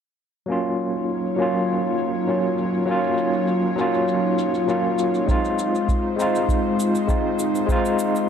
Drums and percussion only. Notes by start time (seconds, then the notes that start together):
0.49 cabasa
0.65 cabasa
0.80 cabasa
0.95 cabasa
1.09 cabasa
1.39 cabasa
1.55 cabasa
1.68 cabasa
1.98 cabasa
2.14 cabasa
2.28 cabasa
2.58 cabasa
2.73 cabasa
2.88 cabasa
3.04 cabasa
3.18 cabasa
3.33 cabasa
3.48 cabasa
3.78 cabasa
3.94 cabasa
4.08 cabasa
4.38 cabasa
4.54 cabasa
4.69 cabasa
4.99 cabasa
5.14 cabasa
5.28 kick, cabasa
5.45 cabasa
5.59 cabasa
5.75 cabasa
5.89 kick, cabasa
6.20 cabasa
6.35 cabasa
6.49 kick, cabasa
6.80 cabasa
6.95 cabasa
7.09 kick, cabasa
7.39 cabasa
7.55 cabasa
7.69 kick, cabasa
7.85 cabasa
7.99 cabasa
8.16 cabasa